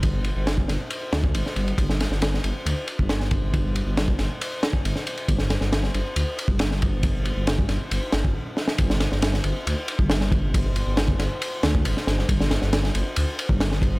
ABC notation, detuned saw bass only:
X:1
M:4/4
L:1/16
Q:1/4=137
K:Cdor
V:1 name="Detuned saw bass" clef=bass
G,,,3 G,,,3 G,,, z3 D,,2 G,,, z G,,, z | G,,,3 G,,,3 G,,, z D,, z2 G,,,4- G,,,- | G,,,3 G,,,3 G,,, z4 G,,, G,,, z3 | G,,,3 G,,,3 G,,, z D,, z2 G,,,4- G,,,- |
G,,,3 G,,,3 G,,, z G,,, z G,,,2 z4 | G,,,3 G,,,3 G,,, z D,, z2 G,,,4- G,,,- | G,,,3 G,,,3 G,,, z3 D,,2 G,,, z G,,, z | G,,,3 G,,,3 G,,, z D,, z2 G,,,4- G,,, |]